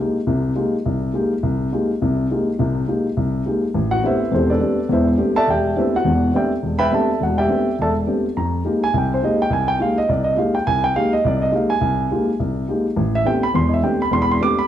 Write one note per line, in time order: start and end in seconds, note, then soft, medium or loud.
0.00 0.17 G#3 soft
0.00 0.17 A#3 soft
0.00 0.17 D#4 soft
0.00 0.17 F4 soft
0.00 0.17 G4 soft
0.27 0.52 C2 medium
0.27 0.52 C3 medium
0.55 0.74 G#3 medium
0.55 0.74 A#3 soft
0.55 0.74 D#4 soft
0.55 0.74 F4 soft
0.55 0.75 G4 soft
0.85 1.10 C2 medium
1.13 1.32 G#3 soft
1.13 1.32 A#3 soft
1.13 1.33 D#4 soft
1.13 1.33 F4 soft
1.13 1.33 G4 medium
1.43 1.68 C2 medium
1.72 1.90 G#3 soft
1.72 1.90 A#3 soft
1.72 1.91 D#4 soft
1.72 1.91 F4 soft
1.72 1.91 G4 medium
2.02 2.26 C2 medium
2.02 2.26 C3 medium
2.31 2.49 G#3 soft
2.31 2.49 A#3 soft
2.31 2.49 D#4 soft
2.31 2.49 F4 soft
2.31 2.49 G4 soft
2.59 2.83 C2 medium
2.59 2.83 C3 medium
2.88 3.06 G#3 soft
2.88 3.06 A#3 soft
2.88 3.06 D#4 soft
2.88 3.06 F4 soft
2.88 3.06 G4 soft
3.17 3.41 C2 medium
3.46 3.64 G#3 soft
3.46 3.64 A#3 soft
3.46 3.64 D#4 soft
3.46 3.64 F4 soft
3.46 3.64 G4 soft
3.74 3.99 A1 medium
3.91 4.02 F#4 medium
3.91 4.02 F#5 medium
4.03 4.21 A3 medium
4.03 4.21 B3 soft
4.03 4.21 C4 soft
4.03 4.21 D4 soft
4.03 4.21 G4 medium
4.03 4.31 B4 medium
4.03 4.31 C5 medium
4.03 4.31 E5 medium
4.07 4.32 E4 medium
4.31 4.56 E1 medium
4.31 4.56 E2 medium
4.31 4.50 C4 medium
4.31 4.50 G4 medium
4.31 4.49 A4 medium
4.31 4.50 C5 medium
4.50 4.59 D4 medium
4.50 4.87 A4 medium
4.50 4.87 B4 medium
4.50 4.87 D5 medium
4.60 4.79 A3 soft
4.60 4.78 B3 soft
4.60 4.79 C4 soft
4.60 4.79 D4 soft
4.60 4.79 G4 soft
4.89 5.14 E1 medium
4.89 5.14 E2 medium
4.89 5.08 E4 soft
4.89 5.07 B4 medium
4.89 5.07 E5 medium
4.93 5.08 C5 medium
5.18 5.36 A3 soft
5.18 5.36 B3 soft
5.18 5.36 C4 soft
5.18 5.36 D4 soft
5.18 5.36 G4 medium
5.36 5.47 A4 medium
5.36 5.47 D5 medium
5.36 5.47 E5 medium
5.36 5.47 A5 loud
5.47 5.72 E1 medium
5.47 5.75 G4 medium
5.47 5.75 D5 medium
5.47 5.75 E5 medium
5.47 5.75 G5 medium
5.77 5.94 A3 soft
5.77 5.94 B3 soft
5.77 5.95 C4 soft
5.77 5.95 D4 soft
5.77 5.94 E4 medium
5.77 5.95 G4 medium
5.77 5.94 B4 soft
5.77 5.94 C5 soft
5.77 5.94 E5 medium
5.96 6.32 F#4 medium
5.96 6.32 F#5 medium
6.04 6.29 E1 medium
6.04 6.29 E2 medium
6.34 6.52 A3 soft
6.34 6.52 B3 soft
6.34 6.52 C4 soft
6.34 6.52 D4 soft
6.34 6.52 G4 medium
6.34 6.52 D5 medium
6.34 6.51 E5 medium
6.34 6.51 G5 medium
6.63 6.87 E1 medium
6.79 6.91 B4 medium
6.79 6.90 E5 medium
6.79 6.90 G5 medium
6.79 6.90 B5 loud
6.91 7.10 A3 soft
6.91 7.10 B3 soft
6.91 7.10 C4 soft
6.91 7.10 D4 soft
6.91 7.10 G4 medium
6.91 7.20 A4 medium
6.91 7.19 D5 soft
6.91 7.19 E5 medium
6.91 7.19 A5 medium
7.20 7.45 E1 medium
7.20 7.38 F#4 medium
7.20 7.38 F#5 medium
7.38 7.48 G4 medium
7.38 7.75 D5 medium
7.38 7.76 E5 medium
7.38 7.75 G5 medium
7.48 7.67 A3 soft
7.48 7.67 B3 soft
7.48 7.67 C4 soft
7.48 7.67 D4 soft
7.48 7.67 G4 medium
7.79 8.03 E1 medium
7.79 7.91 A4 medium
7.79 7.91 D5 medium
7.79 7.91 A5 medium
7.83 7.92 E5 medium
8.07 8.25 A3 soft
8.07 8.25 B3 soft
8.07 8.25 C4 soft
8.07 8.25 D4 soft
8.07 8.25 G4 medium
8.37 8.61 F2 medium
8.37 8.79 A#5 medium
8.65 8.83 G#3 soft
8.65 8.83 A#3 soft
8.65 8.83 D#4 soft
8.65 8.83 F4 soft
8.65 8.83 G4 medium
8.84 8.94 G#5 medium
8.94 9.18 C2 medium
8.98 9.12 G5 medium
9.14 9.23 C5 medium
9.23 9.40 G#3 soft
9.23 9.40 A#3 soft
9.23 9.41 D#4 soft
9.23 9.41 F4 soft
9.23 9.41 G4 medium
9.23 9.40 D#5 medium
9.42 9.52 G5 medium
9.50 9.75 C2 medium
9.50 9.68 G#5 medium
9.68 9.79 G5 loud
9.79 9.98 G#3 soft
9.79 9.98 A#3 soft
9.79 9.98 D#4 soft
9.79 9.98 F4 soft
9.79 9.98 G4 medium
9.79 9.97 F5 medium
9.98 10.08 D#5 medium
10.09 10.33 C2 medium
10.09 10.25 D5 medium
10.24 10.36 D#5 medium
10.36 10.55 G#3 soft
10.36 10.55 A#3 soft
10.36 10.55 D#4 soft
10.36 10.55 F4 soft
10.36 10.55 G4 medium
10.36 10.54 F5 medium
10.55 10.66 G5 medium
10.67 10.91 C2 medium
10.67 10.83 G#5 medium
10.84 10.95 G5 medium
10.96 11.14 G#3 soft
10.96 11.14 A#3 soft
10.96 11.14 D#4 soft
10.96 11.14 F4 soft
10.96 11.14 G4 medium
10.96 11.12 F5 loud
11.13 11.24 D#5 medium
11.25 11.49 C2 medium
11.25 11.42 D5 medium
11.42 11.52 D#5 medium
11.52 11.70 G#3 soft
11.52 11.71 A#3 soft
11.52 11.71 D#4 soft
11.52 11.71 F4 soft
11.52 11.71 G4 medium
11.52 11.71 F5 medium
11.70 12.35 G#5 medium
11.81 12.06 C2 medium
12.11 12.29 G#3 medium
12.11 12.29 A#3 soft
12.11 12.29 D#4 soft
12.11 12.29 F4 soft
12.11 12.29 G4 medium
12.40 12.64 C2 medium
12.68 12.86 G#3 soft
12.68 12.86 A#3 soft
12.68 12.86 D#4 soft
12.68 12.87 F4 soft
12.68 12.87 G4 medium
12.96 13.21 A1 medium
13.15 13.26 E5 medium
13.25 13.43 A3 soft
13.25 13.43 B3 soft
13.25 13.43 C4 soft
13.25 13.43 D4 soft
13.25 13.44 G4 medium
13.25 13.42 G5 medium
13.43 13.54 B5 medium
13.54 13.79 E1 medium
13.54 13.79 E2 medium
13.54 13.71 C6 medium
13.69 13.70 D#5 medium
13.74 13.83 E5 medium
13.83 14.01 A3 soft
13.83 14.01 B3 soft
13.83 14.01 C4 soft
13.83 14.01 D4 soft
13.83 14.02 G4 soft
13.83 14.00 G5 medium
14.02 14.12 B5 medium
14.11 14.36 E1 medium
14.11 14.36 E2 medium
14.11 14.21 C6 medium
14.22 14.31 B5 medium
14.31 14.40 C6 medium
14.41 14.59 A3 medium
14.41 14.59 B3 soft
14.41 14.59 C4 soft
14.41 14.59 D4 soft
14.41 14.59 G4 medium
14.41 14.58 D6 loud
14.59 14.67 B5 medium